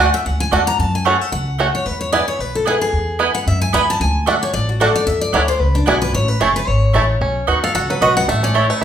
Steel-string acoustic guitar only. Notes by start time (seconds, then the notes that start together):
0.00 G#5
0.14 E5
0.26 F#5
0.40 G#5
0.53 A5
0.67 A#5
0.80 A5
0.95 G#5
1.07 F#5
1.21 E5
1.32 F#5
1.75 C#5
1.86 B4
2.01 C#5
2.13 D5
2.28 C#5
2.40 B4
2.55 A4
2.67 G#4
2.81 G#4
3.35 F#5
3.48 E5
3.61 G#5
3.74 B5
3.90 A5
4.01 G#5
4.27 E5
4.43 C#5
4.54 D5
4.69 F#4
4.81 A4
4.96 D5
5.07 E5
5.21 D5
5.34 C#5
5.48 C5
5.60 B4
5.75 D4
5.88 F#4
6.02 B4
6.14 C#5
6.28 B4
6.41 G#4
6.56 B4
6.68 C#5
7.64 F5
7.75 F#5
7.90 B4
8.02 D#5
8.17 F#5
8.29 E5
8.44 D5
8.56 C#5
8.70 B4